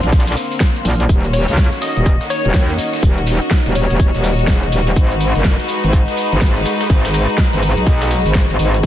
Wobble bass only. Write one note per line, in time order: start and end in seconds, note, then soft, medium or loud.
0.03 0.35 A#1 medium
0.85 1.08 A#1 loud
1.09 1.46 D#1 loud
1.48 1.70 C#2 medium
1.97 2.19 D#1 loud
2.45 2.53 D#1 loud
2.54 2.77 D#2 loud
3.03 3.40 D#1 medium
3.66 3.88 D#1 medium
3.90 4.12 D#1 loud
4.15 4.46 D#1 loud
4.48 4.71 E1 loud
4.72 4.95 D#1 loud
4.96 5.33 G#1 loud
5.36 5.57 F#1 loud
5.84 6.06 G#1 loud
6.32 6.40 G#1 loud
6.42 6.64 G#1 loud
6.90 7.27 G#1 loud
7.53 7.75 G#1 medium
7.77 8.23 B1 loud
8.26 8.48 G#1 loud
8.50 8.58 G#1 loud
8.59 8.82 G#1 loud